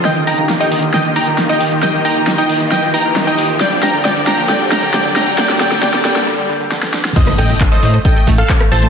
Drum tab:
CC |----------------|----------------|----------------|----------------|
HH |xxoxxxoxxxoxxxox|xxoxxxoxxxoxxxox|xxoxxxoxxxoxxxox|xxoxxxox--------|
CP |----------------|----------------|----------------|----------------|
SD |o---o---o---o---|o---o---o---o---|o-o-o-o-o-o-o-o-|oooooooo----oooo|
BD |----------------|----------------|----------------|----------------|

CC |x---------------|
HH |xxoxxxoxxxoxxxox|
CP |----x-------x---|
SD |-r-----------r--|
BD |o---o---o-o-o---|